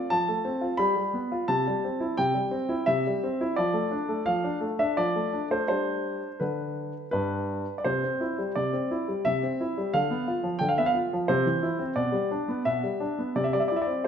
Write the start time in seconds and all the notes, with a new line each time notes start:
Already playing: F4 D5
0.10 F3 A5
0.28 A3
0.45 C4
0.61 F4
0.77 G3 B5
0.96 G3
1.13 B3
1.32 F4
1.48 C3 A5
1.67 G3
1.84 C4
2.00 E4
2.17 C3 G5
2.34 G3
2.51 C4
2.69 E4
2.86 C3 E5
3.07 G3
3.24 C4
3.41 E4
3.56 F3 D5
3.73 A3
3.91 D4
4.09 A3
4.26 F3 F5
4.44 D4
4.60 A3
4.79 D4 E5
4.97 F3 D5
5.15 A3
5.33 D4
5.50 A3 C5
5.68 G3 D4 C5
6.40 D3 B4
7.11 G2 B4
7.78 D5
7.84 C3 C5
8.04 C4
8.21 E4
8.38 G3
8.55 C3 D5
8.73 C4
8.91 E4
9.08 G3
9.25 C3 E5
9.43 C4
9.61 E4
9.78 G3
9.94 D3 F5
10.11 B3
10.28 F4
10.43 F3
10.59 D3 G5
10.69 F5
10.78 B3 E5
10.86 F5
10.95 F4
11.13 F3
11.28 C3 C5
11.46 E3
11.63 E4
11.79 C4
11.96 B2 D5
12.12 G3
12.31 D4
12.48 B3
12.65 B2 E5
12.83 G3
13.00 D4
13.18 B3
13.36 C3 D5
13.44 E5
13.53 G3 D5
13.60 E5
13.68 E4 D5
13.76 E5
13.82 D5
13.87 C4
14.04 C5